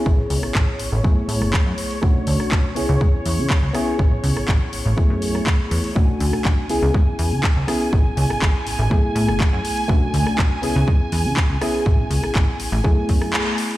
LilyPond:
<<
  \new Staff \with { instrumentName = "Violin section" } { \time 4/4 \key a \major \tempo 4 = 122 cis''1~ | cis''1~ | cis''1 | gis''1~ |
gis''1~ | gis''1~ | gis''1 | }
  \new Staff \with { instrumentName = "Reed electric piano" } { \time 4/4 \key a \major <b cis' e' gis'>2 <a b e' gis'>2 | <a cis' d' fis'>4. <b cis' e' gis'>2 <b cis' e' gis'>8~ | <b cis' e' gis'>2 <a b e' gis'>2 | <a cis' d' fis'>4. <b cis' e' gis'>2 <b cis' e' gis'>8~ |
<b cis' e' gis'>2 <a b e' gis'>2 | <a cis' d' fis'>4. <b cis' e' gis'>2 <b cis' e' gis'>8~ | <b cis' e' gis'>2 <a b e' gis'>2 | }
  \new Staff \with { instrumentName = "Analog synth bass" } { \clef bass \time 4/4 \key a \major a,,16 r16 cis,16 a,,16 a,,16 r16 a,,16 a,,16 fis,16 a,16 a,16 fis,,16 r16 fis,16 r8 | b,,16 r16 d,16 b,,16 b,,16 r16 cis,16 cis,16 gis,16 e,16 e,16 cis16 r16 cis,16 r8 | a,,16 r16 cis,16 a,,16 a,,16 r16 a,,16 a,,16 r16 fis,8. r8 e,16 r16 | b,,16 r16 d,16 b,,16 b,,16 r16 cis,16 cis,16 gis,16 e,16 e,16 cis16 r16 cis,16 r8 |
a,,16 r16 cis,16 a,,16 a,,16 r16 a,,16 a,,16 fis,16 a,16 a,16 fis,,16 r16 fis,16 r8 | b,,16 r16 d,16 b,,16 b,,16 r16 cis,16 cis,16 gis,16 r16 e,16 cis16 r16 cis,16 r8 | a,,16 r16 cis,16 a,,16 a,,16 r16 a,,16 a,,16 fis,16 r16 fis,8 r4 | }
  \new DrumStaff \with { instrumentName = "Drums" } \drummode { \time 4/4 bd8 hho16 ss16 <hc bd>8 hho8 bd8 hho16 ss16 <hc bd>8 hho16 hho16 | bd8 hho16 ss16 <hc bd>8 hho8 bd8 hho8 <hc bd>8 <hho ss>8 | bd8 hho16 ss16 <hc bd>8 hho8 bd8 hho16 ss16 <hc bd>8 hho16 hho16 | bd8 hho16 ss16 <hc bd>8 hho8 bd8 hho8 <hc bd>8 <hho ss>8 |
bd8 hho16 ss16 <hc bd>8 hho8 bd8 hho16 ss16 <hc bd>8 hho16 hho16 | bd8 hho16 ss16 <hc bd>8 hho8 bd8 hho8 <hc bd>8 <hho ss>8 | bd8 hho16 ss16 <hc bd>8 hho8 bd8 <hho bd>16 ss16 hc8 hho16 hho16 | }
>>